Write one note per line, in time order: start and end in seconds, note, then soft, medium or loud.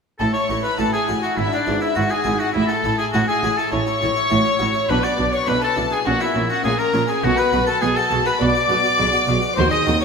0.19 0.28 A1 medium
0.19 0.28 A2 medium
0.19 0.47 A2 medium
0.19 0.28 E4 medium
0.19 0.33 A4 medium
0.19 0.26 A4 medium
0.19 0.34 A5 medium
0.34 0.50 E4 medium
0.34 0.47 C#5 medium
0.34 0.64 C#5 medium
0.34 0.64 C#6 medium
0.49 0.58 A1 medium
0.49 0.57 A2 medium
0.49 0.76 A2 medium
0.49 0.65 A3 medium
0.49 0.57 E4 medium
0.63 0.80 E4 medium
0.63 0.78 B4 medium
0.63 0.79 B4 medium
0.63 0.79 B5 loud
0.78 0.87 A1 medium
0.78 1.05 A2 medium
0.78 0.87 A2 medium
0.78 0.86 E4 medium
0.78 0.93 F#4 soft
0.78 0.85 A4 medium
0.78 0.92 A4 medium
0.78 0.93 A5 loud
0.93 1.09 E4 medium
0.93 1.06 G#4 medium
0.93 1.23 G#4 medium
0.93 1.22 G#5 medium
1.08 1.17 A1 medium
1.08 1.35 A2 medium
1.08 1.16 A2 medium
1.08 1.16 E4 medium
1.08 1.23 F#4 soft
1.22 1.38 E4 medium
1.22 1.37 F#4 medium
1.22 1.39 F#4 medium
1.22 1.38 F#5 medium
1.37 1.46 G#1 medium
1.37 1.46 G#2 medium
1.37 1.64 G#2 medium
1.37 1.45 E4 medium
1.37 1.52 E4 medium
1.37 1.53 E5 loud
1.52 1.81 D4 medium
1.52 1.68 E4 soft
1.52 1.82 D5 medium
1.66 1.76 G#1 medium
1.66 1.93 G#2 medium
1.66 1.75 G#2 medium
1.66 1.82 B3 medium
1.66 1.74 E4 medium
1.81 1.97 E4 medium
1.81 1.96 E4 medium
1.81 1.88 E4 medium
1.81 1.97 E5 medium
1.95 2.04 G#1 medium
1.95 2.22 G#2 medium
1.95 2.04 G#2 medium
1.95 2.04 E4 medium
1.95 2.10 F#4 soft
1.95 2.12 F#4 medium
1.95 2.11 F#4 medium
1.95 2.11 F#5 medium
2.09 2.26 E4 medium
2.09 2.40 G#4 medium
2.09 2.39 G#5 loud
2.24 2.34 G#1 medium
2.24 2.51 G#2 medium
2.24 2.34 G#2 medium
2.24 2.33 E4 medium
2.24 2.40 F#4 soft
2.39 2.54 E4 medium
2.39 2.52 F#4 medium
2.39 2.55 F#4 medium
2.39 2.55 F#5 medium
2.53 2.63 A1 medium
2.53 2.81 A2 medium
2.53 2.63 A2 medium
2.53 2.66 E4 medium
2.53 2.69 E4 medium
2.53 2.63 E4 medium
2.53 2.69 E5 loud
2.67 2.85 E4 medium
2.67 2.97 A4 medium
2.67 2.99 A5 medium
2.72 3.00 A4 medium
2.84 2.93 A1 medium
2.84 3.11 A2 medium
2.84 2.93 A2 medium
2.84 3.00 A3 medium
2.84 2.92 E4 medium
2.98 3.14 E4 medium
2.98 3.05 G#4 medium
2.98 3.14 G#4 medium
2.98 3.06 G#5 loud
3.12 3.23 A1 medium
3.12 3.40 A2 medium
3.12 3.22 A2 medium
3.12 3.21 E4 medium
3.12 3.27 F#4 loud
3.12 3.28 F#4 soft
3.12 3.29 F#4 medium
3.12 3.19 F#5 loud
3.28 3.44 E4 medium
3.28 3.59 G#4 medium
3.28 3.58 G#4 medium
3.28 3.57 G#5 loud
3.43 3.52 A1 medium
3.43 3.51 A2 medium
3.43 3.70 A2 medium
3.43 3.51 E4 medium
3.43 3.58 F#4 medium
3.57 3.73 E4 medium
3.57 3.71 A4 medium
3.57 3.73 A4 medium
3.57 3.73 A5 medium
3.70 3.81 A1 medium
3.70 3.99 A2 medium
3.70 3.81 A2 medium
3.70 3.80 E4 medium
3.70 4.91 C#5 loud
3.70 4.88 C#5 loud
3.70 4.88 C#6 loud
3.87 4.02 E4 soft
4.01 4.11 A1 medium
4.01 4.28 A2 medium
4.01 4.10 A2 medium
4.01 4.17 A3 medium
4.01 4.09 E4 medium
4.16 4.32 E4 medium
4.30 4.40 A1 medium
4.30 4.57 A2 medium
4.30 4.39 A2 medium
4.30 4.38 E4 medium
4.30 4.45 F#4 soft
4.45 4.60 E4 medium
4.59 4.69 A1 medium
4.59 4.86 A2 medium
4.59 4.68 A2 medium
4.59 4.68 E4 medium
4.59 4.74 F#4 soft
4.74 4.89 E4 medium
4.88 4.98 B1 medium
4.88 5.16 B2 medium
4.88 4.97 B2 medium
4.88 4.97 D4 medium
4.88 5.06 B4 medium
4.88 5.04 B4 loud
4.88 5.03 B5 loud
5.03 5.19 F#4 medium
5.03 5.33 D5 medium
5.03 5.33 D6 medium
5.18 5.27 B1 medium
5.18 5.44 B2 medium
5.18 5.26 B2 medium
5.18 5.27 D4 medium
5.32 5.48 D4 medium
5.32 5.48 C#5 medium
5.32 5.50 C#5 medium
5.32 5.47 C#6 loud
5.46 5.57 B1 medium
5.46 5.73 B2 medium
5.46 5.55 B2 medium
5.46 5.56 D4 medium
5.46 5.62 E4 soft
5.46 5.63 B4 loud
5.46 5.63 B4 medium
5.46 5.62 B5 loud
5.61 5.77 D4 medium
5.61 5.92 A4 medium
5.61 5.77 A4 medium
5.61 5.91 A5 loud
5.76 5.86 B1 medium
5.76 6.03 B2 medium
5.76 5.84 B2 medium
5.76 5.84 D4 medium
5.76 5.91 E4 medium
5.91 6.06 D4 medium
5.91 6.06 G#4 medium
5.91 5.98 G#4 medium
5.91 6.07 G#5 loud
6.05 6.15 A#1 medium
6.05 6.13 A#2 medium
6.05 6.32 A#2 medium
6.05 6.14 C#4 medium
6.05 6.23 F#4 medium
6.05 6.21 F#4 medium
6.05 6.21 F#5 loud
6.20 6.49 E4 medium
6.20 6.50 E4 medium
6.20 6.36 F#4 medium
6.20 6.51 E5 loud
6.34 6.44 A#1 medium
6.34 6.61 A#2 medium
6.34 6.43 A#2 medium
6.34 6.42 C#4 medium
6.49 6.65 C#4 medium
6.49 6.55 F#4 medium
6.49 6.63 F#4 medium
6.49 6.65 F#5 loud
6.63 6.73 A#1 medium
6.63 6.72 A#2 medium
6.63 6.91 A#2 medium
6.63 6.71 C#4 medium
6.63 6.79 D4 medium
6.63 6.80 G#4 loud
6.63 6.79 G#4 medium
6.63 6.79 G#5 loud
6.79 6.94 C#4 medium
6.79 7.08 A#4 medium
6.79 7.08 A#5 loud
6.93 7.03 A#1 medium
6.93 7.02 A#2 medium
6.93 7.20 A#2 medium
6.93 7.01 C#4 medium
6.93 7.08 D4 soft
7.08 7.23 C#4 medium
7.08 7.23 G#4 medium
7.08 7.25 G#4 medium
7.08 7.23 G#5 medium
7.23 7.32 B1 loud
7.23 7.50 B2 medium
7.23 7.31 B2 medium
7.23 7.31 F#4 medium
7.23 7.40 F#4 loud
7.23 7.38 F#4 loud
7.23 7.38 F#5 loud
7.37 7.53 F#4 medium
7.37 7.67 B4 medium
7.37 7.66 B4 medium
7.37 7.68 B5 loud
7.52 7.61 B1 medium
7.52 7.60 B2 medium
7.52 7.79 B2 medium
7.52 7.68 B3 medium
7.52 7.61 F#4 medium
7.67 7.82 F#4 medium
7.67 7.83 A4 medium
7.67 7.82 A4 medium
7.67 7.82 A5 loud
7.81 7.91 B1 medium
7.81 8.08 B2 medium
7.81 7.89 B2 medium
7.81 7.90 F#4 medium
7.81 7.96 G#4 medium
7.81 7.98 G#4 loud
7.81 7.97 G#4 loud
7.81 7.87 G#5 loud
7.96 8.12 F#4 medium
7.96 8.26 A4 medium
7.96 8.25 A5 loud
8.10 8.20 B1 medium
8.10 8.18 B2 medium
8.10 8.37 B2 medium
8.10 8.19 F#4 medium
8.10 8.25 G#4 medium
8.26 8.41 F#4 medium
8.26 8.33 B4 medium
8.26 8.41 B4 medium
8.26 8.41 B5 loud
8.40 8.49 B1 medium
8.40 8.48 B2 medium
8.40 8.67 B2 medium
8.40 8.49 F#4 medium
8.40 9.27 D5 loud
8.40 9.57 D5 loud
8.40 9.57 D6 loud
8.55 8.70 F#4 medium
8.69 8.78 B1 medium
8.69 8.77 B2 medium
8.69 8.96 B2 medium
8.69 8.85 B3 medium
8.69 8.77 F#4 medium
8.83 8.99 F#4 medium
8.98 9.07 B1 medium
8.98 9.06 B2 loud
8.98 9.24 B2 medium
8.98 9.06 F#4 medium
8.98 9.13 G#4 medium
9.13 9.28 F#4 medium
9.27 9.37 B1 medium
9.27 9.35 B2 medium
9.27 9.54 B2 medium
9.27 9.36 F#4 medium
9.27 9.42 G#4 medium
9.42 9.57 F#4 medium
9.56 9.66 D#2 loud
9.56 9.83 D#3 medium
9.56 9.65 D#3 loud
9.56 9.65 F#4 medium
9.56 9.71 C5 loud
9.56 9.70 C5 loud
9.56 9.72 C6 loud
9.71 9.87 G#4 medium
9.71 9.84 D#5 loud
9.71 10.01 D#5 loud
9.71 10.01 D#6 loud
9.86 9.96 D#2 medium
9.86 9.94 D#3 medium
9.86 10.05 D#3 medium
9.86 10.02 C4 medium
9.86 9.94 F#4 medium
10.01 10.05 F#4 medium
10.01 10.05 C#5 loud